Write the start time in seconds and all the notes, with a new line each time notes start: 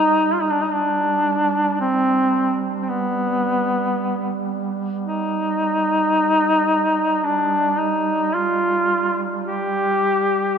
Already playing: G3 D#4
0.34 F4
0.42 D#4
0.51 D4
0.61 D#4
0.73 D4
1.81 C4
2.83 C4
2.89 B3
5.06 D#4
7.24 D4
7.79 D#4
8.35 F4
9.48 G4